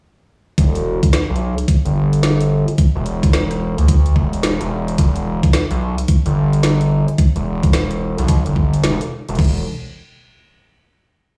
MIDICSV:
0, 0, Header, 1, 3, 480
1, 0, Start_track
1, 0, Key_signature, 1, "minor"
1, 0, Tempo, 550459
1, 505, Time_signature, 4, 2, 24, 8
1, 9918, End_track
2, 0, Start_track
2, 0, Title_t, "Analog synth bass"
2, 0, Program_c, 0, 38
2, 506, Note_on_c, 0, 28, 99
2, 873, Note_off_c, 0, 28, 0
2, 1135, Note_on_c, 0, 35, 98
2, 1352, Note_off_c, 0, 35, 0
2, 1617, Note_on_c, 0, 31, 99
2, 2313, Note_off_c, 0, 31, 0
2, 2577, Note_on_c, 0, 28, 97
2, 3273, Note_off_c, 0, 28, 0
2, 3297, Note_on_c, 0, 38, 97
2, 3611, Note_off_c, 0, 38, 0
2, 3626, Note_on_c, 0, 28, 94
2, 3993, Note_off_c, 0, 28, 0
2, 4015, Note_on_c, 0, 28, 95
2, 4330, Note_off_c, 0, 28, 0
2, 4345, Note_on_c, 0, 28, 100
2, 4713, Note_off_c, 0, 28, 0
2, 4977, Note_on_c, 0, 35, 99
2, 5193, Note_off_c, 0, 35, 0
2, 5458, Note_on_c, 0, 31, 100
2, 6153, Note_off_c, 0, 31, 0
2, 6418, Note_on_c, 0, 28, 97
2, 7113, Note_off_c, 0, 28, 0
2, 7138, Note_on_c, 0, 35, 99
2, 7353, Note_off_c, 0, 35, 0
2, 7380, Note_on_c, 0, 31, 102
2, 7693, Note_off_c, 0, 31, 0
2, 7707, Note_on_c, 0, 28, 101
2, 7834, Note_off_c, 0, 28, 0
2, 8100, Note_on_c, 0, 28, 96
2, 8172, Note_off_c, 0, 28, 0
2, 8186, Note_on_c, 0, 28, 102
2, 8409, Note_off_c, 0, 28, 0
2, 9918, End_track
3, 0, Start_track
3, 0, Title_t, "Drums"
3, 505, Note_on_c, 9, 36, 120
3, 505, Note_on_c, 9, 42, 79
3, 593, Note_off_c, 9, 36, 0
3, 593, Note_off_c, 9, 42, 0
3, 657, Note_on_c, 9, 42, 39
3, 745, Note_off_c, 9, 42, 0
3, 897, Note_on_c, 9, 36, 111
3, 898, Note_on_c, 9, 42, 57
3, 984, Note_off_c, 9, 36, 0
3, 985, Note_off_c, 9, 42, 0
3, 986, Note_on_c, 9, 38, 121
3, 986, Note_on_c, 9, 42, 86
3, 1073, Note_off_c, 9, 38, 0
3, 1073, Note_off_c, 9, 42, 0
3, 1183, Note_on_c, 9, 42, 38
3, 1270, Note_off_c, 9, 42, 0
3, 1379, Note_on_c, 9, 42, 57
3, 1466, Note_off_c, 9, 42, 0
3, 1466, Note_on_c, 9, 36, 108
3, 1466, Note_on_c, 9, 42, 84
3, 1553, Note_off_c, 9, 36, 0
3, 1554, Note_off_c, 9, 42, 0
3, 1618, Note_on_c, 9, 42, 38
3, 1705, Note_off_c, 9, 42, 0
3, 1857, Note_on_c, 9, 42, 40
3, 1945, Note_off_c, 9, 42, 0
3, 1946, Note_on_c, 9, 38, 116
3, 1946, Note_on_c, 9, 42, 83
3, 2033, Note_off_c, 9, 38, 0
3, 2033, Note_off_c, 9, 42, 0
3, 2098, Note_on_c, 9, 42, 41
3, 2185, Note_off_c, 9, 42, 0
3, 2337, Note_on_c, 9, 42, 40
3, 2425, Note_off_c, 9, 42, 0
3, 2426, Note_on_c, 9, 36, 125
3, 2426, Note_on_c, 9, 42, 86
3, 2513, Note_off_c, 9, 36, 0
3, 2513, Note_off_c, 9, 42, 0
3, 2666, Note_on_c, 9, 42, 41
3, 2753, Note_off_c, 9, 42, 0
3, 2818, Note_on_c, 9, 36, 114
3, 2819, Note_on_c, 9, 42, 59
3, 2905, Note_off_c, 9, 36, 0
3, 2906, Note_off_c, 9, 42, 0
3, 2907, Note_on_c, 9, 38, 123
3, 2907, Note_on_c, 9, 42, 86
3, 2994, Note_off_c, 9, 38, 0
3, 2994, Note_off_c, 9, 42, 0
3, 3059, Note_on_c, 9, 37, 37
3, 3059, Note_on_c, 9, 42, 38
3, 3146, Note_off_c, 9, 37, 0
3, 3146, Note_off_c, 9, 42, 0
3, 3299, Note_on_c, 9, 42, 57
3, 3386, Note_off_c, 9, 42, 0
3, 3387, Note_on_c, 9, 36, 109
3, 3387, Note_on_c, 9, 42, 88
3, 3474, Note_off_c, 9, 36, 0
3, 3474, Note_off_c, 9, 42, 0
3, 3539, Note_on_c, 9, 42, 40
3, 3626, Note_off_c, 9, 42, 0
3, 3626, Note_on_c, 9, 36, 65
3, 3713, Note_off_c, 9, 36, 0
3, 3778, Note_on_c, 9, 42, 38
3, 3865, Note_off_c, 9, 42, 0
3, 3865, Note_on_c, 9, 38, 125
3, 3865, Note_on_c, 9, 42, 85
3, 3953, Note_off_c, 9, 38, 0
3, 3953, Note_off_c, 9, 42, 0
3, 4018, Note_on_c, 9, 42, 41
3, 4105, Note_off_c, 9, 42, 0
3, 4257, Note_on_c, 9, 42, 39
3, 4344, Note_off_c, 9, 42, 0
3, 4345, Note_on_c, 9, 42, 80
3, 4346, Note_on_c, 9, 36, 124
3, 4432, Note_off_c, 9, 42, 0
3, 4433, Note_off_c, 9, 36, 0
3, 4497, Note_on_c, 9, 42, 37
3, 4584, Note_off_c, 9, 42, 0
3, 4737, Note_on_c, 9, 42, 57
3, 4738, Note_on_c, 9, 36, 110
3, 4825, Note_off_c, 9, 36, 0
3, 4825, Note_off_c, 9, 42, 0
3, 4825, Note_on_c, 9, 38, 127
3, 4825, Note_on_c, 9, 42, 79
3, 4913, Note_off_c, 9, 38, 0
3, 4913, Note_off_c, 9, 42, 0
3, 4976, Note_on_c, 9, 42, 37
3, 5064, Note_off_c, 9, 42, 0
3, 5217, Note_on_c, 9, 42, 56
3, 5304, Note_off_c, 9, 42, 0
3, 5304, Note_on_c, 9, 42, 85
3, 5306, Note_on_c, 9, 36, 115
3, 5391, Note_off_c, 9, 42, 0
3, 5393, Note_off_c, 9, 36, 0
3, 5457, Note_on_c, 9, 42, 38
3, 5544, Note_off_c, 9, 42, 0
3, 5696, Note_on_c, 9, 42, 38
3, 5783, Note_off_c, 9, 42, 0
3, 5784, Note_on_c, 9, 38, 122
3, 5784, Note_on_c, 9, 42, 78
3, 5871, Note_off_c, 9, 38, 0
3, 5871, Note_off_c, 9, 42, 0
3, 5937, Note_on_c, 9, 42, 38
3, 6024, Note_off_c, 9, 42, 0
3, 6176, Note_on_c, 9, 42, 39
3, 6263, Note_off_c, 9, 42, 0
3, 6264, Note_on_c, 9, 42, 78
3, 6265, Note_on_c, 9, 36, 127
3, 6351, Note_off_c, 9, 42, 0
3, 6352, Note_off_c, 9, 36, 0
3, 6416, Note_on_c, 9, 42, 36
3, 6504, Note_off_c, 9, 42, 0
3, 6656, Note_on_c, 9, 42, 55
3, 6657, Note_on_c, 9, 36, 112
3, 6744, Note_off_c, 9, 36, 0
3, 6744, Note_off_c, 9, 42, 0
3, 6744, Note_on_c, 9, 38, 127
3, 6744, Note_on_c, 9, 42, 84
3, 6831, Note_off_c, 9, 38, 0
3, 6831, Note_off_c, 9, 42, 0
3, 6895, Note_on_c, 9, 42, 35
3, 6982, Note_off_c, 9, 42, 0
3, 7136, Note_on_c, 9, 42, 54
3, 7224, Note_off_c, 9, 42, 0
3, 7224, Note_on_c, 9, 42, 81
3, 7225, Note_on_c, 9, 36, 110
3, 7311, Note_off_c, 9, 42, 0
3, 7312, Note_off_c, 9, 36, 0
3, 7377, Note_on_c, 9, 42, 38
3, 7464, Note_off_c, 9, 42, 0
3, 7465, Note_on_c, 9, 36, 69
3, 7552, Note_off_c, 9, 36, 0
3, 7617, Note_on_c, 9, 42, 37
3, 7704, Note_off_c, 9, 42, 0
3, 7705, Note_on_c, 9, 38, 120
3, 7705, Note_on_c, 9, 42, 75
3, 7792, Note_off_c, 9, 38, 0
3, 7792, Note_off_c, 9, 42, 0
3, 7857, Note_on_c, 9, 42, 38
3, 7944, Note_off_c, 9, 42, 0
3, 8097, Note_on_c, 9, 42, 35
3, 8156, Note_off_c, 9, 42, 0
3, 8156, Note_on_c, 9, 42, 30
3, 8186, Note_on_c, 9, 36, 112
3, 8186, Note_on_c, 9, 49, 82
3, 8236, Note_off_c, 9, 42, 0
3, 8236, Note_on_c, 9, 42, 23
3, 8273, Note_off_c, 9, 36, 0
3, 8273, Note_off_c, 9, 49, 0
3, 8324, Note_off_c, 9, 42, 0
3, 9918, End_track
0, 0, End_of_file